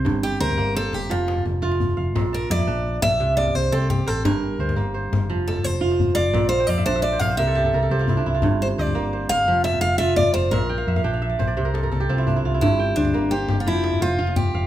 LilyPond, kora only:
<<
  \new Staff \with { instrumentName = "Kora" } { \time 12/8 \key g \dorian \tempo 4. = 115 c''8 g''8 c''4 c''4. r4 f'4 f''8~ | f''8 a''8 e''4. r2 c'4 c''8~ | c''8 r8 c''4 c''4. r4 f'4 f''8~ | f''8 f''16 g''16 f''16 e''16 d''16 e''16 d''16 c''16 d''16 c''16 bes'16 a'16 g'16 a'16 bes'16 a'16 g'16 f'16 e'16 d'16 e'16 f'16~ |
f'16 r8. c''4 c''4. r4 f'4 f''8~ | f''8 g''16 f''16 e''16 f''16 g''16 f''16 e''16 d''16 c''16 d''16 c''16 bes'16 a'16 bes'16 a'16 g'16 f'16 e'16 d'16 e'16 f'16 e'16~ | e'16 r16 g''8 c''4 c''8 g'4 r8 c''8 f'4 f''8 | }
  \new Staff \with { instrumentName = "Kora" } { \clef bass \time 12/8 \key g \dorian g,4 r8 bes4 r8 f4 r8 f'4 r8 | bes,4 r8 d'4 r8 c4 r8 c'4 r8 | g,4 r8 bes4 r8 f4 r8 f'4 r8 | bes,4 r8 d'4 r8 c4 r8 c'4 r8 |
g,4 r8 bes4 r8 f4 r8 f'4 r8 | bes,4 r8 d'4 r8 c4 r8 c'4 r8 | g,4 r8 bes4 r8 f4 r8 f'4 r8 | }
>>